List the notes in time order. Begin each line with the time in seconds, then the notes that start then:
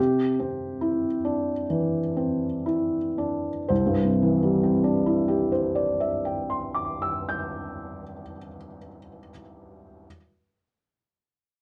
Already playing: C3 G4
0.40 C4
0.81 E4
1.25 D4
1.70 E3
2.16 C4
2.66 E4
3.18 D4
3.69 C2 C5
3.87 G2
4.05 C3
4.23 E3
4.43 G3
4.63 C4
4.84 D4
5.06 E4
5.28 G4
5.52 C5
5.75 D5
6.00 E5
6.25 G5
6.50 C6
6.75 D6
7.02 E6
7.29 G6